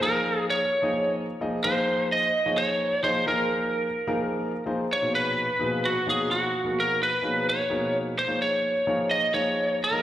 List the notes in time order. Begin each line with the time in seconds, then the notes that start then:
0.01 F3 A#3 D#4 G#4 A#4
0.50 C#5
0.82 F3 A#3 D#4 G#4 D#5
1.41 F3 A#3 D#4 G#4 D#5
1.64 F3 A#3 D#4 G#4 C5
2.12 D#5
2.46 F3 A#3 D#4 G#4 C#5
2.58 C#5
3.03 F3 A#3 D#4 G#4 C5 D#5
3.26 F3 A#3 D#4 G#4 A#4
4.07 F3 A#3 D#4 G#4 A#4
4.66 F3 A#3 D#4 G#4 C5
4.93 C#5
5.01 A#2 B2 F3 D#4 G#4 C#5
5.15 B4
5.59 A#2 B2 F3 D#4 G#4 B4
5.86 F#4
6.06 B2 F3 A#3 D#4 G#4 C#5
6.31 F#4
6.64 B2 F3 A#3 D#4 G#4 A#4
6.80 A#4
7.03 B4
7.22 B2 F3 A#3 D#4 G#4 C#5
7.49 C#5
7.69 B2 F3 A#3 D#4 G#4 A#4
8.19 C5
8.28 F3 A#3 D#4 G#4 C#5
8.42 C#5
8.87 F3 A#3 D#4 G#4 C#5
9.11 D#5
9.34 F3 A#3 D#4 G#4 C#5
9.84 A#4
9.91 F3 A#3 D#4 G#4 D#5